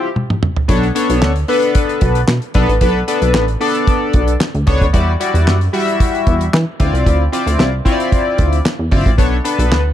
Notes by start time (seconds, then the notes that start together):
0.16 high tom
0.30 mid tom
0.43 mid tom
0.56 floor tom
0.68 B1 B3 D4 A4 C#5, kick, closed hi-hat
0.83 closed hi-hat
0.95 B3 D4 A4 C#5, closed hi-hat
1.10 B1, closed hi-hat
1.22 D2, snare, clap
1.36 closed hi-hat
1.48 B3 D4 A4 B4, open hi-hat
1.62 closed hi-hat
1.75 kick, closed hi-hat
1.89 closed hi-hat
2.01 B1, kick, closed hi-hat
2.15 closed hi-hat
2.28 B2, snare, clap
2.42 closed hi-hat
2.54 B1 B3 D4 A4 B4, kick, closed hi-hat
2.69 A1, closed hi-hat
2.81 B1 B3 D4 A4 B4, kick, closed hi-hat
3.08 B3 D4 A4 B4, closed hi-hat
3.22 B1, closed hi-hat
3.34 A1, snare, clap
3.48 closed hi-hat
3.61 B3 D4 A4 D5, open hi-hat
3.75 closed hi-hat
3.87 kick, closed hi-hat
4.13 B1, kick, closed hi-hat
4.28 closed hi-hat
4.41 snare, clap
4.54 D2, closed hi-hat
4.67 C#2 B3 D4 A4 C#5, kick, closed hi-hat
4.81 D2, kick, closed hi-hat
4.93 E2 G3 E4 F#4 D5, kick, closed hi-hat
5.20 G3 E4 F#4 D5, closed hi-hat
5.34 E2, closed hi-hat
5.46 F#2, snare, clap
5.61 closed hi-hat
5.73 G3 E4 F#4 E5, open hi-hat
5.88 closed hi-hat
6.00 kick, closed hi-hat
6.15 closed hi-hat
6.27 E2, kick, closed hi-hat
6.41 closed hi-hat
6.53 E3, snare, clap
6.79 D2 C4 E4 F4 D5, kick, closed hi-hat
6.93 C2, closed hi-hat
7.06 D2, kick, closed hi-hat
7.32 C4 E4 F4 D5, closed hi-hat
7.46 D2, closed hi-hat
7.59 C2, snare, clap
7.85 C4 E4 F4 C#5, kick, closed hi-hat
7.92 D5
8.00 closed hi-hat
8.12 kick, closed hi-hat
8.38 D2, kick, closed hi-hat
8.53 closed hi-hat
8.66 snare, clap
8.79 E2
8.91 G1 C4 E4 F4 D5, kick, open hi-hat
9.06 A1, kick, closed hi-hat
9.18 B1 B3 D4 A4 C#5, kick, closed hi-hat
9.44 B3 D4 A4 B4, closed hi-hat
9.59 B1, closed hi-hat
9.72 D2, snare, clap